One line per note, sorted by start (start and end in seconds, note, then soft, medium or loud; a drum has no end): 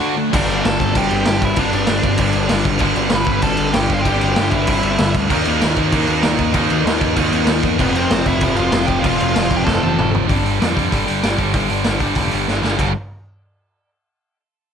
0.00 0.16 D3 medium
0.00 0.16 D3 loud
0.00 0.17 A3 loud
0.00 0.16 A3 medium
0.00 0.15 D4 loud
0.00 0.16 D4 loud
0.00 0.14 F#4 medium
0.00 0.14 F#5 medium
0.17 0.31 D3 medium
0.17 0.32 A3 medium
0.17 0.32 D4 medium
0.33 0.46 G1 loud
0.33 0.94 G2 medium
0.33 0.94 D3 loud
0.33 0.95 G3 loud
0.33 0.63 D4 medium
0.33 0.66 D5 medium
0.33 kick loud
0.33 crash loud
0.33 crash medium
0.47 0.61 G1 medium
0.47 crash medium
0.64 0.77 G1 medium
0.64 0.93 A4 medium
0.64 0.97 A5 loud
0.64 snare loud
0.64 crash medium
0.80 0.93 G1 medium
0.80 kick loud
0.80 crash medium
0.94 1.08 G1 loud
0.94 1.54 G2 medium
0.94 1.55 D3 medium
0.94 1.57 G3 medium
0.94 1.25 G4 medium
0.94 1.25 G5 loud
0.94 kick loud
0.94 crash loud
1.11 1.24 G1 loud
1.11 crash medium
1.25 1.40 G1 loud
1.25 1.41 G4 medium
1.25 1.44 G5 loud
1.25 snare loud
1.25 crash loud
1.42 1.55 G1 medium
1.42 1.58 E4 medium
1.42 1.59 E5 loud
1.42 kick medium
1.42 crash medium
1.55 1.70 G1 loud
1.55 2.17 G2 loud
1.55 2.17 D3 loud
1.55 2.19 G3 loud
1.55 1.74 D5 loud
1.55 kick loud
1.55 crash loud
1.60 1.73 D4 medium
1.73 1.86 G1 medium
1.73 2.63 D4 medium
1.73 2.63 D5 medium
1.73 crash medium
1.87 2.01 G1 loud
1.87 snare loud
1.87 crash loud
2.03 2.16 G1 medium
2.03 kick loud
2.03 crash medium
2.17 2.32 G1 loud
2.17 2.79 G2 medium
2.17 2.79 D3 medium
2.17 2.81 G3 medium
2.17 kick loud
2.17 crash loud
2.33 2.48 G1 medium
2.33 crash medium
2.49 2.64 G1 medium
2.49 snare loud
2.49 crash loud
2.65 2.78 G1 medium
2.65 kick medium
2.65 crash medium
2.79 2.94 G1 loud
2.79 3.41 G2 loud
2.79 3.42 D3 loud
2.79 3.44 G3 loud
2.79 kick loud
2.79 crash medium
2.96 3.09 G1 medium
2.96 crash medium
3.10 3.25 G1 loud
3.10 snare loud
3.10 crash medium
3.15 3.43 B4 medium
3.15 3.43 B5 loud
3.25 3.40 G1 medium
3.25 kick medium
3.25 crash medium
3.42 3.56 G1 medium
3.42 4.03 G2 medium
3.42 4.04 D3 medium
3.42 4.06 G3 loud
3.42 3.73 A4 medium
3.42 3.76 A5 loud
3.42 kick loud
3.42 crash medium
3.57 3.72 G1 medium
3.57 crash medium
3.73 3.88 G1 medium
3.73 3.98 G4 medium
3.73 3.93 G5 loud
3.73 snare loud
3.73 crash medium
3.89 4.03 G1 medium
3.89 kick medium
3.89 crash medium
3.94 4.01 F5 medium
3.99 4.06 F4 medium
3.99 4.33 G5 loud
4.04 4.19 G1 loud
4.04 4.66 G2 loud
4.04 4.67 D3 loud
4.04 4.69 G3 loud
4.04 4.35 G4 medium
4.04 kick loud
4.04 crash medium
4.21 4.35 G1 medium
4.21 crash medium
4.34 4.50 G1 loud
4.34 4.50 G5 medium
4.34 snare loud
4.34 crash medium
4.39 4.53 G4 medium
4.50 4.65 G1 medium
4.50 5.11 E4 medium
4.50 5.14 E5 medium
4.50 kick medium
4.50 crash medium
4.67 4.81 G1 loud
4.67 5.29 G2 medium
4.67 5.29 D3 medium
4.67 5.30 G3 medium
4.67 kick loud
4.67 crash loud
4.83 4.96 G1 medium
4.83 crash medium
4.98 5.13 G1 medium
4.98 snare loud
4.98 crash loud
5.14 5.28 D2 medium
5.14 kick medium
5.14 crash medium
5.29 5.44 D#2 loud
5.29 5.91 D#3 loud
5.29 5.92 A#3 loud
5.29 5.93 D#4 loud
5.29 kick loud
5.29 crash loud
5.45 5.60 D#2 medium
5.45 crash medium
5.61 5.76 D#2 medium
5.61 snare loud
5.61 crash medium
5.76 5.90 D#2 medium
5.76 kick loud
5.76 crash medium
5.92 6.06 D#2 medium
5.92 6.53 D#3 medium
5.92 6.54 A#3 medium
5.92 6.55 D#4 medium
5.92 kick loud
5.92 crash loud
6.07 6.21 D#2 medium
6.07 crash medium
6.23 6.37 D#2 loud
6.23 snare loud
6.23 crash medium
6.39 6.52 D#2 loud
6.39 kick medium
6.39 crash medium
6.54 6.68 D#2 loud
6.54 7.15 D#3 loud
6.54 7.15 A#3 loud
6.54 7.16 D#4 loud
6.54 kick loud
6.54 crash medium
6.70 6.84 D#2 medium
6.70 crash medium
6.85 6.98 D#2 loud
6.85 snare loud
6.85 crash medium
7.01 7.15 D#2 medium
7.01 kick medium
7.01 crash medium
7.16 7.30 D#2 medium
7.16 7.78 D#3 medium
7.16 7.78 A#3 medium
7.16 7.79 D#4 medium
7.16 kick loud
7.16 crash loud
7.32 7.45 D#2 medium
7.32 crash medium
7.47 7.61 D#2 loud
7.47 snare loud
7.47 crash medium
7.62 7.77 E2 medium
7.62 kick medium
7.62 crash medium
7.78 7.92 F1 loud
7.78 8.40 F2 loud
7.78 8.40 C3 loud
7.78 8.41 F3 loud
7.78 7.95 B3 medium
7.78 kick loud
7.78 crash medium
7.82 7.96 B4 medium
7.94 8.08 F1 medium
7.94 8.26 C4 medium
7.94 8.25 C5 medium
7.94 crash medium
8.10 8.23 F1 loud
8.10 snare loud
8.10 crash medium
8.26 8.39 F1 medium
8.26 8.57 E4 medium
8.26 8.56 E5 medium
8.26 kick medium
8.26 crash medium
8.41 8.55 F1 medium
8.41 9.01 F2 medium
8.41 9.02 C3 medium
8.41 9.03 F3 medium
8.41 kick loud
8.41 crash medium
8.56 8.71 F1 loud
8.56 8.87 F4 medium
8.56 8.89 F5 loud
8.56 crash medium
8.72 8.86 F1 loud
8.72 snare loud
8.72 crash medium
8.86 9.01 F1 medium
8.86 9.02 G4 medium
8.86 9.03 G5 loud
8.86 kick medium
8.86 crash medium
9.00 9.64 F2 loud
9.00 9.65 C3 loud
9.00 9.18 F4 medium
9.00 9.16 F5 loud
9.04 9.17 F1 loud
9.04 9.66 F3 loud
9.04 kick loud
9.04 crash medium
9.18 9.33 F1 medium
9.18 9.56 F4 medium
9.18 9.55 F5 loud
9.18 crash medium
9.36 9.49 F1 medium
9.36 snare loud
9.36 crash medium
9.51 9.64 F1 medium
9.51 kick loud
9.51 crash medium
9.57 9.66 G4 medium
9.57 9.65 G5 loud
9.65 9.79 F1 loud
9.65 10.27 F2 medium
9.65 10.27 C3 medium
9.65 10.28 F3 loud
9.65 10.11 A4 medium
9.65 10.09 A5 loud
9.65 kick loud
9.65 snare medium
9.83 9.96 F1 medium
9.83 high tom medium
9.99 10.11 F1 medium
9.99 mid tom loud
10.15 10.27 F#1 medium
10.15 floor tom medium
10.27 10.44 G1 medium
10.27 10.44 G2 medium
10.27 10.43 D3 loud
10.27 10.43 G3 loud
10.27 kick loud
10.27 open hi-hat medium
10.44 10.60 G1 medium
10.44 10.60 G2 medium
10.44 10.59 D3 medium
10.44 10.61 G3 medium
10.44 open hi-hat medium
10.60 10.90 F2 medium
10.60 10.76 G2 medium
10.60 10.75 D3 medium
10.60 10.75 G3 medium
10.60 snare loud
10.60 open hi-hat medium
10.76 10.92 G2 medium
10.76 10.92 D3 medium
10.76 10.93 G3 loud
10.76 kick medium
10.76 open hi-hat medium
10.92 11.07 G1 medium
10.92 11.07 G2 medium
10.92 11.06 D3 medium
10.92 11.06 G3 medium
10.92 kick loud
10.92 open hi-hat medium
11.07 11.23 G1 medium
11.07 11.22 G2 medium
11.07 11.21 D3 medium
11.07 11.23 G3 medium
11.07 open hi-hat medium
11.22 11.52 G1 medium
11.22 11.39 G2 medium
11.22 11.37 D3 medium
11.22 11.38 G3 medium
11.22 snare loud
11.22 open hi-hat medium
11.38 11.53 G2 medium
11.38 11.53 D3 medium
11.38 11.53 G3 medium
11.38 kick medium
11.38 open hi-hat soft
11.54 11.69 G1 medium
11.54 11.69 G2 loud
11.54 11.70 D3 loud
11.54 11.69 G3 loud
11.54 kick loud
11.54 open hi-hat medium
11.70 11.85 G1 medium
11.70 11.85 G2 medium
11.70 11.85 D3 medium
11.70 11.85 G3 medium
11.70 open hi-hat medium
11.84 12.00 G1 medium
11.84 12.01 G2 medium
11.84 12.01 D3 medium
11.84 12.00 G3 medium
11.84 snare loud
11.84 open hi-hat medium
12.00 12.15 G1 medium
12.00 12.16 G2 medium
12.00 12.16 D3 medium
12.00 12.16 G3 loud
12.00 kick medium
12.00 open hi-hat medium
12.15 12.31 F1 medium
12.15 12.32 G2 medium
12.15 12.32 D3 medium
12.15 12.32 G3 medium
12.15 kick loud
12.15 open hi-hat medium
12.31 12.48 G1 medium
12.31 12.47 G2 medium
12.31 12.47 D3 medium
12.31 12.47 G3 loud
12.31 open hi-hat medium
12.48 12.62 G1 medium
12.48 12.62 G2 medium
12.48 12.61 D3 medium
12.48 12.61 G3 medium
12.48 snare medium
12.63 12.78 G1 medium
12.63 12.76 G2 medium
12.63 12.77 D3 medium
12.63 12.77 G3 medium
12.63 snare medium
12.77 12.94 G1 medium
12.77 12.91 G2 loud
12.77 12.91 D3 loud
12.77 12.91 G3 medium
12.77 kick loud
12.77 crash medium